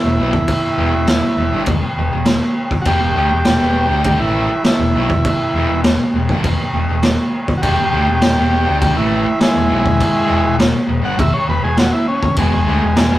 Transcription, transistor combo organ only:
0, 0, Header, 1, 2, 480
1, 0, Start_track
1, 0, Tempo, 594648
1, 386, Time_signature, 4, 2, 24, 8
1, 10645, End_track
2, 0, Start_track
2, 0, Title_t, "Transistor combo organ"
2, 0, Program_c, 0, 18
2, 0, Note_on_c, 0, 64, 91
2, 1317, Note_off_c, 0, 64, 0
2, 2273, Note_on_c, 0, 66, 72
2, 2303, Note_off_c, 0, 66, 0
2, 2313, Note_on_c, 0, 67, 100
2, 3245, Note_off_c, 0, 67, 0
2, 3274, Note_on_c, 0, 67, 94
2, 3385, Note_off_c, 0, 67, 0
2, 3390, Note_on_c, 0, 64, 92
2, 3741, Note_off_c, 0, 64, 0
2, 3762, Note_on_c, 0, 64, 86
2, 4690, Note_off_c, 0, 64, 0
2, 6115, Note_on_c, 0, 66, 67
2, 6146, Note_off_c, 0, 66, 0
2, 6151, Note_on_c, 0, 67, 93
2, 7083, Note_off_c, 0, 67, 0
2, 7108, Note_on_c, 0, 67, 96
2, 7222, Note_off_c, 0, 67, 0
2, 7239, Note_on_c, 0, 64, 85
2, 7585, Note_off_c, 0, 64, 0
2, 7598, Note_on_c, 0, 56, 85
2, 7609, Note_on_c, 0, 64, 105
2, 8522, Note_off_c, 0, 56, 0
2, 8531, Note_off_c, 0, 64, 0
2, 8919, Note_on_c, 0, 78, 107
2, 9027, Note_off_c, 0, 78, 0
2, 9043, Note_on_c, 0, 76, 97
2, 9149, Note_off_c, 0, 76, 0
2, 9152, Note_on_c, 0, 73, 92
2, 9262, Note_off_c, 0, 73, 0
2, 9280, Note_on_c, 0, 71, 98
2, 9386, Note_off_c, 0, 71, 0
2, 9395, Note_on_c, 0, 68, 89
2, 9504, Note_off_c, 0, 68, 0
2, 9520, Note_on_c, 0, 66, 98
2, 9626, Note_off_c, 0, 66, 0
2, 9628, Note_on_c, 0, 64, 93
2, 9740, Note_off_c, 0, 64, 0
2, 9750, Note_on_c, 0, 61, 92
2, 9981, Note_off_c, 0, 61, 0
2, 9996, Note_on_c, 0, 56, 95
2, 10645, Note_off_c, 0, 56, 0
2, 10645, End_track
0, 0, End_of_file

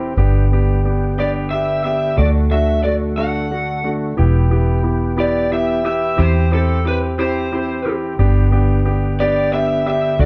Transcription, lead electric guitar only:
0, 0, Header, 1, 2, 480
1, 0, Start_track
1, 0, Tempo, 668003
1, 126, Time_signature, 6, 3, 24, 8
1, 7370, End_track
2, 0, Start_track
2, 0, Title_t, "Lead electric guitar"
2, 0, Program_c, 0, 29
2, 860, Note_on_c, 0, 74, 62
2, 923, Note_off_c, 0, 74, 0
2, 1083, Note_on_c, 0, 76, 70
2, 1314, Note_off_c, 0, 76, 0
2, 1323, Note_on_c, 0, 76, 67
2, 1563, Note_off_c, 0, 76, 0
2, 1566, Note_on_c, 0, 74, 68
2, 1631, Note_off_c, 0, 74, 0
2, 1808, Note_on_c, 0, 76, 68
2, 2035, Note_off_c, 0, 76, 0
2, 2037, Note_on_c, 0, 74, 69
2, 2103, Note_off_c, 0, 74, 0
2, 2282, Note_on_c, 0, 78, 75
2, 2795, Note_off_c, 0, 78, 0
2, 3737, Note_on_c, 0, 74, 72
2, 3955, Note_off_c, 0, 74, 0
2, 3972, Note_on_c, 0, 76, 85
2, 4202, Note_off_c, 0, 76, 0
2, 4210, Note_on_c, 0, 76, 82
2, 4452, Note_on_c, 0, 72, 75
2, 4455, Note_off_c, 0, 76, 0
2, 4694, Note_off_c, 0, 72, 0
2, 4697, Note_on_c, 0, 69, 69
2, 4915, Note_off_c, 0, 69, 0
2, 4943, Note_on_c, 0, 71, 74
2, 5006, Note_off_c, 0, 71, 0
2, 5178, Note_on_c, 0, 72, 66
2, 5683, Note_off_c, 0, 72, 0
2, 6611, Note_on_c, 0, 74, 83
2, 6846, Note_off_c, 0, 74, 0
2, 6849, Note_on_c, 0, 76, 93
2, 7086, Note_off_c, 0, 76, 0
2, 7095, Note_on_c, 0, 76, 87
2, 7314, Note_off_c, 0, 76, 0
2, 7334, Note_on_c, 0, 74, 69
2, 7370, Note_off_c, 0, 74, 0
2, 7370, End_track
0, 0, End_of_file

